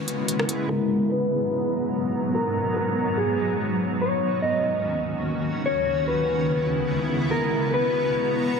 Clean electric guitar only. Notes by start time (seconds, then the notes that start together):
Already playing: B4
0.69 A#4
1.12 B4
2.35 A#4
2.76 A#4
3.17 G#4
4.01 C#5
4.42 D#5
5.66 C#5
6.08 B4
7.31 A#4
7.74 B4